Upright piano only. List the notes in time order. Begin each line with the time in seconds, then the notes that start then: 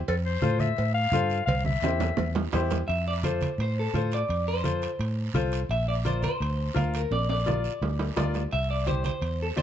0.42 F4 A4 C5
1.13 F4 A4 C5
1.83 E4 G4 C5
2.53 E4 G4 C5
3.24 F4 A4 C5
3.94 F4 A4 C5
4.64 F4 A4 C5
5.35 F4 A4 C5
6.05 F4 A#4 D5
6.74 F4 A#4 F5
7.46 F4 A#4 D5
8.17 F4 A#4 D5
8.86 E4 G4 C5
9.56 E4 G4 D5